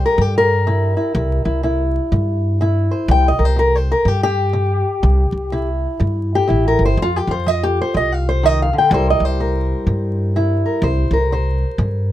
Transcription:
Already playing: C3 G3
0.06 A#4
0.18 G2 C3 G4
0.38 A#4
0.67 C3 E4
0.97 E4
1.15 C2 C3 E4
1.45 C2 E4
1.63 C3 E4
2.12 G2 C3
2.61 C3 E4
2.91 C5
3.08 C2 C3 G5
3.28 D#5
3.39 C2 A#4
3.45 C5
3.56 C3 A#4
3.75 C5
3.92 A#4
4.05 G2 C3 G4
4.23 G4
4.53 C3
5.03 C2 C3
5.32 C2
5.52 C3 E4
6.00 G2 C3
6.35 G4
6.47 A1 C3 E4
6.68 A#4
6.79 G1
6.85 C5
6.97 F2 F3
7.02 F4
7.16 G4
7.27 F2 F4 C5
7.46 F3 D#5
7.63 G4
7.82 C5
7.94 C2 F3 D#5
8.12 F5
8.29 C5
8.43 D#3 D#5
8.62 F5
8.73 D3
8.78 G5
8.91 C2 C3 G3 E4 A#4 C5
9.10 D#5
9.20 C2
9.25 C5
9.40 C3 A#4
9.87 G2 C3
10.36 C3 E4
10.65 A#4
10.82 C2 C3 C5
11.11 C2 A#4
11.32 C3 C5
11.78 G2 C3

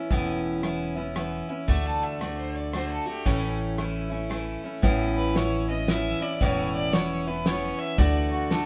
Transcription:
Already playing: B3 C#4 E4
0.11 E1 A2 E3 B3 C#4 E4, kick, closed hi-hat
0.63 E3 B3 C#4 E4, cross-stick, closed hi-hat
0.95 B3 C#4 E4
1.15 E3 B3 C#4 E4, cross-stick, closed hi-hat
1.49 B3 C#4 E4
1.68 D2 D3 A3 D4 F#4 E5, kick, closed hi-hat
1.86 A5
2.03 E5
2.20 D3 A3 D4 F#4 D5, cross-stick, closed hi-hat
2.38 C5
2.56 D5
2.73 D3 A3 D4 F#4 C5, cross-stick, closed hi-hat
2.92 A4
3.06 A3 D4 F#4 G4
3.25 A1 A2 E3 A3 C#4 E4, kick, closed hi-hat
3.78 E3 A3 C#4 E4, cross-stick, closed hi-hat
4.10 A3 C#4 E4
4.29 E3 A3 C#4 E4, cross-stick, closed hi-hat
4.62 A3 C#4 E4
4.82 A1 A2 E3 B3 C#4 E4, kick, closed hi-hat
5.17 B4
5.35 E3 B3 C#4 E4 C#5, snare, closed hi-hat
5.68 B3 C#4 E4 D#5
5.88 E3 B3 C#4 E4 E5, snare, closed hi-hat
6.21 B3 C#4 E4 D5
6.41 E1 A2 E3 B3 C#4 E4 C#5, kick, closed hi-hat
6.76 D5
6.93 E3 B3 C#4 E4 C#5, snare, closed hi-hat
7.27 B3 C#4 E4 B4
7.46 E3 B3 C#4 E4 C#5, snare, closed hi-hat
7.79 E5
7.98 D2 D3 A3 D4 F#4 D5, kick, closed hi-hat
8.31 F#4
8.50 D3 A3 D4 F#4 A4, snare, closed hi-hat

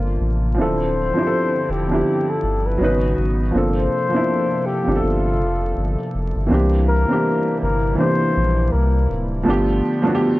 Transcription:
Already playing: G1 C3 F3 A#3 C4 D4 F4 A4 A#4
0.21 A1
0.54 D1 D3 F3 C4 D4 E4
0.59 E4 A4 C5
1.14 F3 C4 D4
1.18 E4 G4
1.27 A4
1.69 E1 G4
1.88 F3 C4 D4
1.93 E4 G4
2.30 A4
2.43 G1
2.66 B4
2.78 G#1 C#3 F#3 B3 C#4 F#4
2.82 D#4 B4
3.18 G#1
3.51 G1 F3 A#3 C4 A4
3.55 C3 F3 D4 A4 C5
4.09 F3 A#3 C4
4.14 D4 E4
4.66 G4
4.83 F3 A#3 C4
4.87 G1 D4 G4
4.96 A4
5.02 G1 F4
5.40 F1
5.77 G1
6.15 F1
6.36 G1
6.47 C3 E3 G3 A#3 C4 E4 G4
6.51 C2 D4 G4
6.88 A#4
7.06 E3 A#3 C4
7.11 D4 G4
7.61 G1 A#4
7.95 E3 A#3 C4 C5
8.00 D4 G4
8.37 A#1
8.72 C2 A#4
9.10 D1
9.43 D3 F3 G3 A3 B3 F4
9.48 G1 D4 G4
10.02 F3 A3 B3
10.06 D4 F#4
10.15 G4

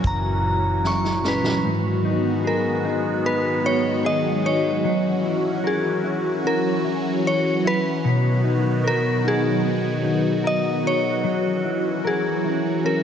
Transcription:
Already playing: A#2 E3 F#3 C#4 F#4 A#4
0.04 F#1 E4 A#5, kick, closed hi-hat
0.84 E4 C#6, snare
1.05 snare
1.24 C#4 B4, snare
1.45 snare
1.62 G#2 D#3 F#3 G#3 B3 F#4
2.05 D#4
2.44 G#4 A#4
2.85 D#4
3.25 B3 B4
3.64 D#4 C#5
4.04 G#4 D#5
4.45 D#4 C#5
4.83 E3 F#3 C#4 F#4
5.24 E4
5.64 G#4 A#4
6.04 E4
6.44 C#4 A#4
6.84 E4
7.27 C#5
7.65 E4 B4
8.04 B2 D#3 B3 F#4
8.44 D#4
8.84 A#4
9.24 D#4 G#4
9.64 B3
10.04 D#4
10.44 A#4 D#5
10.84 D#4 C#5
11.24 E3 F#3 C#4
11.65 E4
12.04 G#4 A#4
12.44 E4
12.84 C#4 A#4

